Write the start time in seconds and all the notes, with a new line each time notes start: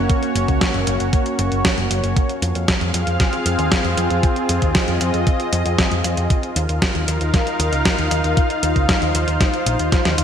Already playing: A#3 C#4 F#4 C#5
0.10 kick, closed hi-hat
0.23 closed hi-hat
0.35 F#1, closed hi-hat
0.48 C#2, kick, closed hi-hat
0.61 kick, snare, closed hi-hat
0.74 F#1, closed hi-hat
0.87 F#1, closed hi-hat
1.00 F#1, closed hi-hat
1.13 kick, closed hi-hat
1.26 closed hi-hat
1.39 F#1, closed hi-hat
1.52 F#1, closed hi-hat
1.65 kick, snare, closed hi-hat
1.78 F#1, closed hi-hat
1.91 F#1, closed hi-hat
2.03 F#1, closed hi-hat
2.16 C4 F4 G#4 F5, kick, closed hi-hat
2.29 closed hi-hat
2.42 F2, closed hi-hat
2.55 F2, closed hi-hat
2.68 kick, snare, closed hi-hat
2.81 F2, closed hi-hat
2.94 F2, closed hi-hat
3.07 F2, closed hi-hat
3.20 kick, snare, closed hi-hat
3.33 closed hi-hat
3.46 F2, closed hi-hat
3.59 D#2, closed hi-hat
3.72 kick, snare, closed hi-hat
3.85 F2, closed hi-hat
3.97 F2, closed hi-hat
4.10 F2, closed hi-hat
4.23 D#5, kick, closed hi-hat
4.36 closed hi-hat
4.49 F2, closed hi-hat
4.62 D#2, kick, closed hi-hat
4.75 kick, snare, closed hi-hat
4.88 F2, closed hi-hat
5.01 F2, closed hi-hat
5.14 F2, closed hi-hat
5.27 kick, closed hi-hat
5.40 closed hi-hat
5.53 F2, closed hi-hat
5.66 F2, closed hi-hat
5.79 kick, snare, closed hi-hat
5.92 F2, closed hi-hat
6.04 F2, closed hi-hat
6.17 F2, closed hi-hat
6.30 D#4 F4 A#4 F5, kick, closed hi-hat
6.43 closed hi-hat
6.56 D#2, closed hi-hat
6.69 D#2, closed hi-hat
6.82 kick, snare, closed hi-hat
6.95 D#2, closed hi-hat
7.08 D#2, closed hi-hat
7.21 D#2, closed hi-hat
7.34 kick, snare, closed hi-hat
7.47 closed hi-hat
7.60 D#2, closed hi-hat
7.72 C#2, closed hi-hat
7.85 kick, snare, closed hi-hat
7.98 D#2, closed hi-hat
8.11 D#2, closed hi-hat
8.24 D#2, closed hi-hat
8.37 C5, kick, closed hi-hat
8.50 closed hi-hat
8.63 D#2, closed hi-hat
8.76 C#2, kick, closed hi-hat
8.89 kick, snare, closed hi-hat
9.02 D#2, closed hi-hat
9.15 D#2, closed hi-hat
9.28 D#2, closed hi-hat
9.41 kick, snare, closed hi-hat
9.54 closed hi-hat
9.66 A#1, closed hi-hat
9.79 D#2, closed hi-hat
9.92 kick, snare, closed hi-hat
10.05 D#2, snare, closed hi-hat
10.18 D#2, closed hi-hat